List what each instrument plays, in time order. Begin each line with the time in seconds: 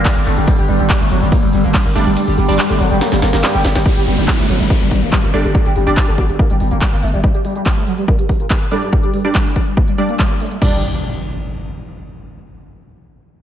Already playing: synth drone G2 D3
0.05 analog synth lead G3, kick, clap, closed hi-hat, ride
0.16 808-style bass G1, analog synth lead A#3, closed hi-hat
0.26 808-style bass G1, analog synth lead A3, open hi-hat
0.32 closed hi-hat
0.37 808-style bass G1, analog synth lead G3, closed hi-hat
0.47 analog synth lead G3, kick, closed hi-hat, ride
0.58 808-style bass G1, analog synth lead G4, closed hi-hat
0.69 808-style bass G1, analog synth lead G3, open hi-hat
0.79 808-style bass G1, analog synth lead G3, closed hi-hat
0.90 analog synth lead G3, kick, clap, closed hi-hat, ride
1.00 808-style bass G1, analog synth lead A3, closed hi-hat
1.11 808-style bass G1, analog synth lead F#3, open hi-hat
1.22 808-style bass G1, analog synth lead G3, closed hi-hat
1.32 analog synth lead A#3, kick, closed hi-hat, ride
1.43 808-style bass G1, analog synth lead G3, closed hi-hat
1.53 808-style bass G1, analog synth lead G3, open hi-hat
1.64 808-style bass G1, analog synth lead A#3, closed hi-hat
1.74 analog synth lead G3, kick, clap, closed hi-hat, ride
1.85 808-style bass G1, analog synth lead A#3, closed hi-hat
1.95 808-style bass G1, supersaw synth G3 D4 D5, analog synth lead A3, open hi-hat
2.01 closed hi-hat
2.06 808-style bass G1, analog synth lead G3, closed hi-hat
2.17 analog synth lead G3, closed hi-hat, ride
2.27 808-style bass G1, analog synth lead G4, closed hi-hat
2.38 808-style bass G1, analog synth lead G3, open hi-hat
2.48 808-style bass G1, supersaw synth G3 D4 D5, analog synth lead G3, closed hi-hat
2.59 analog synth lead G3, clap, closed hi-hat, ride
2.70 808-style bass G1, analog synth lead A3, closed hi-hat
2.80 808-style bass G1, analog synth lead F#3, open hi-hat
2.91 808-style bass G1, analog synth lead G3, closed hi-hat
3.01 analog synth lead A#3, snare, closed hi-hat, ride
3.12 808-style bass G1, analog synth lead G3, snare, closed hi-hat
3.22 808-style bass G1, analog synth lead A#3, snare, open hi-hat
3.33 808-style bass G1, analog synth lead A#3, snare, closed hi-hat
3.43 analog synth lead G3, snare, clap, closed hi-hat, ride
3.54 808-style bass G1, analog synth lead G4, closed hi-hat
3.64 808-style bass G1, analog synth lead G3, snare, open hi-hat
3.70 closed hi-hat
3.75 808-style bass G1, analog synth lead G3, snare, closed hi-hat
3.86 analog synth lead G3, kick, closed hi-hat, downlifter
3.96 808-style bass G1, analog synth lead G4, closed hi-hat
4.07 808-style bass G1, analog synth lead G3, open hi-hat
4.18 808-style bass G1, analog synth lead G3, closed hi-hat
4.28 analog synth lead G3, kick, clap, closed hi-hat
4.39 808-style bass G1, analog synth lead A3, closed hi-hat
4.49 808-style bass G1, analog synth lead F#3, open hi-hat
4.60 808-style bass G1, analog synth lead G3, closed hi-hat
4.70 analog synth lead A#3, kick, closed hi-hat
4.81 808-style bass G1, analog synth lead G3, closed hi-hat
4.91 808-style bass G1, analog synth lead G3, kick, open hi-hat
5.02 808-style bass G1, analog synth lead A#3, closed hi-hat
5.12 analog synth lead G3, kick, clap, closed hi-hat
5.23 808-style bass G1, analog synth lead A#3, closed hi-hat
5.34 808-style bass G1, supersaw synth G3 D4 D5, analog synth lead A3, open hi-hat
5.39 closed hi-hat
5.44 808-style bass G1, analog synth lead G3, closed hi-hat
5.55 analog synth lead G3, kick, closed hi-hat
5.66 808-style bass G1, analog synth lead G4, closed hi-hat
5.76 808-style bass G1, analog synth lead G3, open hi-hat
5.87 808-style bass G1, supersaw synth G3 D4 D5, analog synth lead G3, closed hi-hat
5.97 analog synth lead G3, kick, clap, closed hi-hat
6.08 808-style bass G1, analog synth lead A3, closed hi-hat
6.18 808-style bass G1, analog synth lead F#3, kick, open hi-hat
6.29 808-style bass G1, analog synth lead G3, closed hi-hat
6.39 analog synth lead A#3, kick, closed hi-hat
6.50 808-style bass G1, analog synth lead G3, closed hi-hat
6.60 808-style bass G1, analog synth lead G3, open hi-hat
6.71 808-style bass G1, analog synth lead A#3, closed hi-hat
6.81 analog synth lead G3, kick, clap, closed hi-hat
6.92 808-style bass G1, analog synth lead A#3, closed hi-hat
7.03 808-style bass G1, analog synth lead A3, open hi-hat
7.08 closed hi-hat
7.13 808-style bass G1, analog synth lead G3, closed hi-hat
7.24 analog synth lead G3, kick, closed hi-hat
7.34 analog synth lead G4, closed hi-hat
7.45 analog synth lead G3, open hi-hat
7.56 analog synth lead G3, closed hi-hat
7.66 analog synth lead G3, kick, clap, closed hi-hat
7.77 analog synth lead A3, closed hi-hat
7.87 analog synth lead F#3, open hi-hat
7.98 analog synth lead G3, closed hi-hat
8.08 analog synth lead A#3, kick, closed hi-hat
8.19 analog synth lead G3, closed hi-hat
8.29 analog synth lead G3, kick, open hi-hat
8.40 analog synth lead A#3, closed hi-hat
8.50 analog synth lead G3, kick, clap, closed hi-hat
8.61 analog synth lead A#3, closed hi-hat
8.71 supersaw synth G3 D4 D5, analog synth lead A3, open hi-hat
8.77 closed hi-hat
8.82 analog synth lead G3, closed hi-hat
8.93 analog synth lead G3, kick, closed hi-hat
9.03 analog synth lead G4, closed hi-hat
9.14 analog synth lead G3, open hi-hat
9.25 analog synth lead G3, supersaw synth G3 D4 D5, closed hi-hat
9.35 analog synth lead G3, kick, clap, closed hi-hat
9.46 analog synth lead A3, closed hi-hat
9.56 analog synth lead F#3, kick, open hi-hat
9.67 analog synth lead G3, closed hi-hat
9.77 analog synth lead A#3, kick, closed hi-hat
9.88 analog synth lead G3, closed hi-hat
9.98 supersaw synth G3 D4 D5, analog synth lead G3, open hi-hat
10.09 analog synth lead A#3, closed hi-hat
10.19 analog synth lead G3, kick, clap, closed hi-hat
10.30 analog synth lead A#3, closed hi-hat
10.40 analog synth lead A3, open hi-hat
10.46 closed hi-hat
10.51 analog synth lead G3, closed hi-hat
10.62 supersaw synth G3 D4 D5, analog synth lead G3, kick, crash, impact